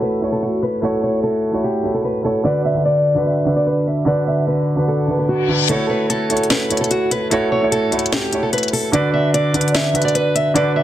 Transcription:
Already playing: A3 E4 F#4 C#5 E5
0.02 B4
0.21 A3 E4 F#4 C#5
0.32 A4
0.42 F#4
0.63 B4
0.82 A3 E4 F#4 A4 C#5
1.03 C#5
1.23 A4
1.52 A3 E4 F#4 C#5
1.64 G4
1.83 A3 E4 F#4 C#5
1.94 A4
2.04 B4
2.23 A3 E4 F#4 A4 C#5
2.44 D3 D4 F#4 B4 D5
2.65 E5
2.74 D3 D4 F#4 B4
2.85 D5
3.15 D3 D4 F#4 B4
3.26 E5
3.45 D3 D4 F#4 B4
3.56 D5
3.66 B4
3.87 E5
4.05 D3 D4 F#4 B4 D5
4.27 E5
4.47 B4
4.76 D3 D4 F#4 B4
4.88 A4, reverse cymbal
5.07 D3 D4 F#4 B4
5.19 B4
5.29 F#4
5.48 D3 D4 F#4 B4
5.68 A3 E4 F#4 A4 C#5, closed hi-hat
5.90 B4
6.10 A4, closed hi-hat
6.29 A3 E4 F#4 C#5, closed hi-hat
6.37 closed hi-hat
6.43 closed hi-hat
6.50 B4, snare, closed hi-hat
6.69 A3 E4 F#4 C#5, closed hi-hat
6.77 A4, closed hi-hat
6.84 closed hi-hat
6.91 F#4, closed hi-hat
7.11 B4, closed hi-hat
7.30 A3 E4 F#4 A4 C#5, closed hi-hat
7.52 C#5
7.61 A3 E4 F#4 C#5
7.72 A4, closed hi-hat
7.91 A3 E4 F#4 C#5, closed hi-hat
7.99 closed hi-hat
8.06 closed hi-hat
8.12 G4, snare, closed hi-hat
8.31 A3 E4 F#4 C#5, closed hi-hat
8.43 A4
8.53 B4, closed hi-hat
8.58 closed hi-hat
8.63 closed hi-hat
8.68 closed hi-hat
8.73 A4, open hi-hat
8.92 D3 D4 F#4 B4 D5, closed hi-hat
9.14 E5
9.34 D5, closed hi-hat
9.53 D3 D4 F#4 B4, closed hi-hat
9.61 closed hi-hat
9.68 closed hi-hat
9.74 E5, snare, closed hi-hat
9.93 D3 D4 F#4 B4, closed hi-hat
10.02 D5, closed hi-hat
10.08 closed hi-hat
10.15 B4, closed hi-hat
10.35 E5, closed hi-hat
10.54 D3 D4 F#4 B4 D5, closed hi-hat
10.76 E5

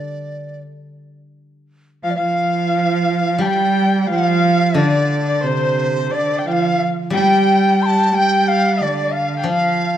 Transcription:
Already playing: D3 D5
2.03 F3 F5
2.11 D5
2.16 F3 F5
3.38 G3 G5 A5
3.46 G5
4.01 G5
4.07 F3 F5
4.11 F5
4.74 D3 D5
4.79 D5
5.27 D5
5.43 C3 C5
5.47 C5
5.94 C5
6.11 D3 D5
6.39 G5
6.45 F3 F5 G5
6.53 F5
7.10 G3 G5
7.16 G5
7.82 A5 C6
8.13 G3 G5
8.48 F5
8.79 D3 D5
9.11 F5
9.39 G5
9.44 F3 F5
9.48 F5

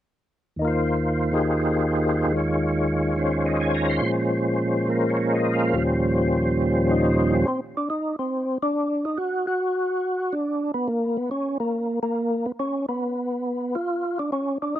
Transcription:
0.56 D#2 D#3
0.62 A#3 F4
0.68 C5
1.31 D#3 D#4 G4 G#4
2.25 D#2 D#3
2.31 G#3 F4
2.37 C#5
3.16 D#3 C#4 C5
3.46 D#5
3.61 G#5
3.74 A#5
3.89 C6
4.01 A#2 F3 G#3
4.05 C#4 C5
4.87 F3 A#3 A#4
5.10 C#5
5.32 D#5
5.54 F5
5.72 D#2 A#2 F3 G3 C#4
5.77 C5
6.91 D#4
7.34 C#4
7.48 C4
7.77 D4
7.90 D#4
8.19 C4
8.63 D4
9.05 D#4
9.18 F#4
9.47 F#4
10.33 D4
10.74 B3
10.88 A#3
11.17 B3
11.31 C#4
11.60 A#3
12.03 A#3
12.46 B3
12.59 C#4
12.89 B3
13.75 F4
14.19 D4
14.32 C#4
14.62 D4
14.76 D#4

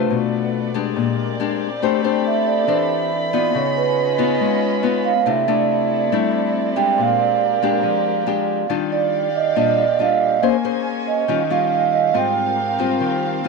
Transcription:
Already playing: A3 D4 F4 B4 C5
0.10 B2 B3 A4 D5
0.74 G#3 D4 G4
0.96 A#2 C4 G4 A#4
1.40 G#3 D4 G4
1.82 A3 D4 G4 A4 C5 B5
2.04 D4 G4 C5
2.27 E5
2.47 D5
2.67 E3 D4 G4 C5
3.33 B3 D#4 F4 D5
3.55 C#3 C#4 F4 C#5 D#5
3.77 B4
4.18 B3 D#4 F4
4.41 G#3
4.83 B3 D#4 F4
5.05 F5
5.25 C3 A3 C4 D4 E4 A4 D5 E5
5.48 A3 D4 E4 D5
6.12 G3 A3 D4 E4
6.76 G#3 D4 G4 G5
6.98 A#2 G4 A#4 F5
7.20 D5
7.63 G#3 D4 G4
7.83 F3
8.27 G#3 D4 G4
8.69 D#3 G3 D4 F4 G4 D5 F5
8.92 D5
9.36 D#5
9.56 A#2 G3 D4 F4 D#5
9.78 D5
9.99 G3 D4 F4 F5
10.42 A#3 C#4 G#4 A#4 C5 G#5
10.65 C#4 G#4 C5
11.07 D#5
11.28 D#3 G3 C#4 F4 G4 D#5 F5
11.50 G3 C#4 F4 F5
11.74 F5
11.93 D#5
12.14 G#2 G3 C4 F4 G4 A#4 G5
12.79 G3 C4 F4
13.00 D#3
13.44 G3 C4

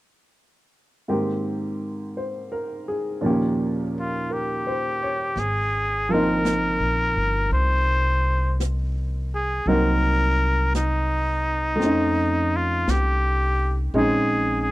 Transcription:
1.08 G#2 D#3 A#3 C4 G4
2.17 C5
2.52 A#4
2.88 G#4
3.21 D#2 A#2 F3 A#3
3.25 C#4 G4
4.00 F4
4.30 G4 A#4
4.67 C5
5.03 C#5
5.36 G#1 G#4, brush sweep, snare
6.09 F3 A#3 C4 A#4
6.14 D#4
6.45 brush sweep, snare, hi-hat pedal
6.80 A#1
7.16 G1
7.51 C2 C5, brush sweep
8.60 brush sweep, snare, hi-hat pedal
9.35 G#4
9.66 C2 F#3 A#3 C4 D#4 A#4, brush sweep
10.75 D#4, brush sweep, snare, hi-hat pedal
11.76 A3 C4
11.80 F2 C#4, brush sweep, snare
11.86 D#4
12.56 F4
12.88 C2 G4, brush sweep, snare, hi-hat pedal
13.94 A#1 G#3 C4 C#4 D#4 G#4, brush sweep
14.61 G#4

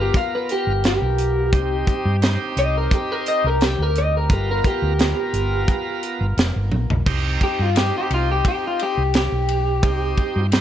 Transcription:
Already playing: B3 F4 A#4
0.01 G4
0.14 F5, kick, closed hi-hat
0.35 B4
0.49 G4, closed hi-hat
0.67 G1
0.84 G4, snare, closed hi-hat
1.02 B1
1.18 closed hi-hat
1.52 C2 C4 D#4 G4, kick, closed hi-hat
1.87 kick, closed hi-hat
2.05 G2
2.22 C4 D#4 G4, snare, closed hi-hat
2.57 C2 D#5, closed hi-hat
2.77 A#4
2.91 G4, kick, closed hi-hat
3.12 A#4
3.26 D#5, closed hi-hat
3.44 C2 A#4
3.61 G4, snare, closed hi-hat
3.79 D2 A#4
3.95 D#5, closed hi-hat
4.17 A#4
4.29 G1 B3 F4 G4 A#4, kick, closed hi-hat
4.51 A#4
4.64 G4, kick, closed hi-hat
4.82 D2
4.99 B3 F4 A#4, snare, closed hi-hat
5.33 G1, closed hi-hat
5.68 kick, closed hi-hat
6.03 closed hi-hat
6.21 G1
6.37 F1, snare, closed hi-hat
6.56 G1
6.72 A#1, high tom
6.90 B1, floor tom
7.06 C2 C4 D#4 G4, kick, crash
7.41 G4, kick, ride
7.59 G2 F4
7.75 C4 D#4 G4, snare, ride
7.98 G4
8.10 C2 F4, ride
8.32 G4
8.45 G4, kick, ride
8.67 F4
8.79 G4, ride
8.97 C2
9.14 G4, snare, ride
9.32 B1
9.48 ride
9.82 C2 C4 D#4 G4, kick, ride
10.18 kick, ride
10.36 G2
10.52 C4 D#4 G4, snare, ride

